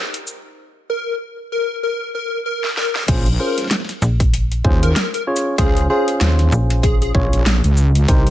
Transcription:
0.14 closed hi-hat
0.27 shaker
0.90 A#4
1.52 A#4
1.83 A#4
2.15 A#4
2.46 A#4
2.64 snare
2.77 A#4, snare
2.95 snare
3.08 A#1 C#4 F4 G#4 C5, kick, closed hi-hat, crash
3.26 closed hi-hat
3.40 C#4 F4 G#4 A#4 C5
3.58 snare, closed hi-hat
3.61 snare
3.64 snare
3.67 snare
3.71 snare, closed hi-hat
3.75 snare
3.80 snare
3.84 snare
3.89 snare, closed hi-hat
4.02 A#1, snare, shaker
4.20 kick, closed hi-hat
4.34 closed hi-hat
4.52 closed hi-hat
4.65 D#2 C#4 F4 G#4 C5, kick
4.83 A#4, closed hi-hat
4.96 A#4, snare, closed hi-hat
5.14 A#4, closed hi-hat
5.27 C#4 F4 G#4 C#5
5.36 closed hi-hat, shaker
5.58 C#2 C#4 F4 G#4 C5, kick, closed hi-hat
5.77 closed hi-hat
5.90 C#4 F4 G#4 C5
6.08 closed hi-hat
6.21 D#2, snare, closed hi-hat
6.39 snare, closed hi-hat
6.52 A#1, shaker
6.70 closed hi-hat
6.83 G#4, kick, closed hi-hat
7.02 G#4, closed hi-hat
7.15 A#1 C#4 F4 G#4 C#5, kick
7.33 A#1, closed hi-hat
7.46 snare, closed hi-hat
7.64 C#2, closed hi-hat
7.77 shaker
7.95 closed hi-hat
8.08 C2 D#4 G4 A#4 C5, kick, closed hi-hat
8.27 closed hi-hat

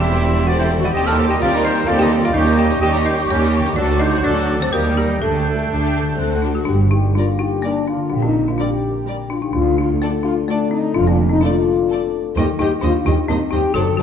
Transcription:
Already playing: E1 E2 E3 G3 G4 C5 C6
0.00 G3 C4 E4 G4 E5 G5
0.11 G3 E4 G4
0.24 C4 E4
0.37 G3 E4 G4
0.46 C4 E4 F#4 A4 D5 F#5
0.50 G3
0.57 E4 G4 C5 E5
0.62 G3 E4
0.72 C4 E4
0.77 D#3 F#4
0.81 G3 E4 G4 D5
0.85 D#4 F#5
0.90 G4 C5 D#5
0.95 D#2 G3 C4 G4 G5 C6
1.06 G3 D#4 A4 F5 A5
1.19 C4 G4
1.28 G3 D#4 G4 D#5 G5
1.33 D#4
1.40 D#2 G3 C4 F4 G4 A#4 D5 F5
1.54 G3 D#4
1.64 C4 D#4 C5 D#5
1.68 G4
1.77 G3 D#4
1.87 D#2 G3 C4 F4 G4 A4 D5 F5
1.99 G3 D#4 G4 D#5 G5
2.13 D#3 C4 G4
2.22 G3 D#4 F4 D5 F5
2.26 C#4
2.31 D#2 D#4 G4 C#5 D#5
2.35 D#2 G3 C#4 G4 C#6
2.45 G3 D#4
2.57 G3 C#4 G4 D#5 G5
2.70 G3 D#4
2.81 D#2 G3 C#4 G4 D#5 G5
2.94 G3 D#4
3.04 G3 C#4 D#4 G4 C5 D#5
3.18 G3 D#4
3.28 D#2 G3 C#4 G4 C#5
3.42 G3 D#4
3.54 G3 C#4 G4
3.59 D3
3.64 F#3 G3 D#4
3.68 D4
3.73 D2 D4 A4 D5 D6
3.77 D2 F#3 D4 F#4 A4
3.89 A3 F#4
4.00 D4 D#4 A4 C5 D#5
4.12 A3 F#4
4.23 D2 F#3 D4 A4 D5
4.36 A3 F#4
4.48 D4 A4
4.55 D#3 C4
4.59 G3 A3 F#4 A4 C5
4.72 D#2 G3 A#3 D#4 G4 A#4 D#6
4.85 G3 D#4 G4
4.96 G3 A#3 D#4 G4 A#4
5.03 D3
5.08 G3 D#4 G4
5.21 D2 A3 D4 A4 G6
5.34 A3 G4
5.44 D4 A4
5.57 A3 G4
5.68 D2 A3 D4 G4 A4
5.84 G4
5.97 A4
6.01 D3
6.06 A3 G4
6.10 F#4
6.15 C4 A4 F#6
6.19 D2 A3 F#4 A4
6.33 F#4
6.42 D4 F#4 A4
6.55 F#4 A4
6.65 G1 G2 D4 G4
6.85 D3
6.91 D#4 G4
7.01 A#3
7.15 G3 D4 F4 A#4 D5
7.33 G4
7.39 D#4 G4
7.49 A#4
7.62 G3 A#3 D4 G4 A#4 D5
7.80 A#3
7.88 D4 F4
7.96 D3
8.10 A#1 A#2 D4
8.14 G4
8.22 C4
8.26 G3 D#4
8.43 A#3
8.48 D4 F4
8.58 G3 D4 G4 A#4 D5
8.75 G4
8.90 A#4
9.06 G3 G4 A#4 D5
9.24 A#3
9.30 D4 F4
9.40 G3 D#4
9.44 G4
9.53 D2 D3 D4 F4
9.71 A3
9.78 D4 F4
9.86 D4
10.02 A3 D4 A4 D5
10.18 D4
10.23 D4 F4
10.34 D5
10.48 A3 D4 A4 D5
10.66 D4
10.71 C4 D#4
10.82 A3
10.94 F1 F2 F3 D4 F4
11.07 A#3 D4
11.28 C4 D4 D#4
11.41 A3 D4 F4 A4 D5
11.59 D4
11.75 D5
11.89 A3 A4 D5
12.07 D4
12.22 A3
12.35 D#2 D#3 G3 D#4 G4 C5 D#5
12.52 G3
12.59 D#2 G3 D#4 G4 C5 D#5
12.81 D#2 G3 D4 F4 C5 D#5
12.99 G4
13.06 D#2 G3 D#4 G4 C5 D#5
13.14 D#5
13.28 D#2 G3 C4 D#4 C5 D#5
13.45 D#4
13.51 D#2 G3 D#4 G4 C5 D#5
13.60 G3
13.74 F#1 F#2 F#3 F#4 A4 C5 D5
13.91 D3
13.97 F#1 F#2 F#3 F#4 A4 C5 D5

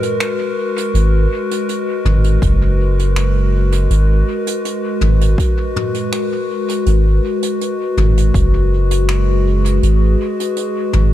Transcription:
Already playing: G#3 F#4 A#4 B4
0.03 closed hi-hat
0.20 finger snap, closed hi-hat
0.77 closed hi-hat
0.94 G#1, closed hi-hat
1.51 closed hi-hat
1.69 closed hi-hat
2.05 G#1, mid tom
2.24 closed hi-hat
2.42 F#1, kick, closed hi-hat
2.99 closed hi-hat
3.16 finger snap, closed hi-hat
3.72 closed hi-hat
3.90 G#1, closed hi-hat
4.47 closed hi-hat
4.65 closed hi-hat
5.01 G#1, mid tom
5.21 closed hi-hat
5.38 kick, closed hi-hat
5.76 mid tom
5.94 closed hi-hat
6.12 finger snap, closed hi-hat
6.69 closed hi-hat
6.86 G#1, closed hi-hat
7.43 closed hi-hat
7.61 closed hi-hat
7.97 G#1, mid tom
8.17 closed hi-hat
8.34 F#1, kick, closed hi-hat
8.91 closed hi-hat
9.09 G#4, finger snap, closed hi-hat
9.65 closed hi-hat
9.83 G#1, closed hi-hat
10.40 closed hi-hat
10.57 closed hi-hat
10.93 G#1, mid tom

